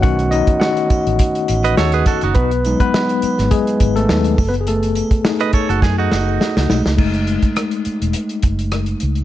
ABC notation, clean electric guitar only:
X:1
M:4/4
L:1/16
Q:"Swing 16ths" 1/4=104
K:F#dor
V:1 name="Clean electric guitar"
z8 z3 [Bd] [Ac] [GB] [FA] [DF]- | [DF] z12 z3 | z4 z [Bd] [Ac] [FA] G [DF]6 z | z16 |]